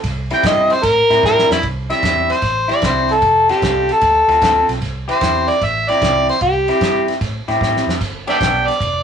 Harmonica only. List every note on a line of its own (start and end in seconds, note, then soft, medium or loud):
0.34 0.45 G5 loud
0.47 0.75 D#5 medium
0.73 0.85 C5 loud
0.84 1.22 A#4 loud
1.25 1.50 A#4 loud
1.52 1.64 E4 loud
1.92 2.33 E5 loud
2.32 2.73 C5 loud
2.71 2.84 D5 medium
2.86 3.14 C5 medium
3.12 3.50 A4 medium
3.50 3.94 G4 medium
3.92 4.71 A4 medium
5.12 5.51 C5 medium
5.50 5.66 D5 loud
5.64 5.91 E5 loud
5.89 6.29 D5 loud
6.29 6.41 C5 medium
6.42 7.04 G4 medium
8.30 8.36 D5 medium
8.30 8.39 E5 medium
8.30 8.69 G5 loud
8.67 9.03 D5 loud